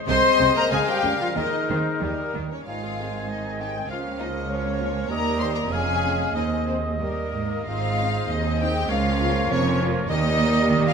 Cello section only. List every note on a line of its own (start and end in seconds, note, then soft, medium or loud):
0.08 0.16 C3 medium
0.40 0.48 C3 medium
0.71 0.79 C#3 medium
1.03 1.11 C#3 medium
1.36 1.44 D#3 medium
1.69 1.77 D#3 medium
2.01 2.09 D#3 medium
2.34 2.42 D#3 medium
2.66 3.85 G#2 medium
3.90 5.10 C#2 medium
5.09 5.67 D#2 medium
5.71 6.35 F2 medium
6.35 6.92 D#2 medium
6.99 7.07 G2 medium
7.32 7.64 G#2 medium
7.65 8.24 G#2 medium
8.28 8.88 D#2 medium
8.88 9.48 C#2 loud
9.49 10.09 F2 loud
10.09 10.70 D#2 loud
10.71 10.93 D#3 medium